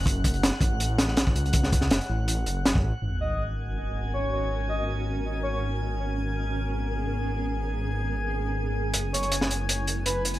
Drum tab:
HH |x-xxx-x-x-x-x-xx|x-x-xx--x-x-x---|----------------|----------------|
SD |----oo----ooo---|-o-oo-------o---|----------------|----------------|
BD |o-o---o------o--|o-o----------o--|----------------|----------------|

HH |----------------|----------------|x-xxx-x-x-x-x-xx|
SD |----------------|----------------|-----o----------|
BD |----------------|----------------|----------------|